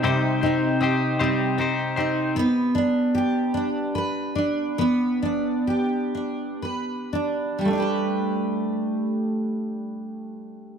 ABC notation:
X:1
M:6/8
L:1/8
Q:3/8=47
K:G
V:1 name="Clean electric guitar"
[C,G,C_EGc] [CEGc] [CEGc] [C,G,CEGc] [CEGc] [CEGc] | z6 | z6 | z6 |]
V:2 name="Steel-string acoustic guitar"
[C,C_EGc] E G C c E | [B,B] D G D B D | [B,B] D G D B D | [G,A,DGB]6 |]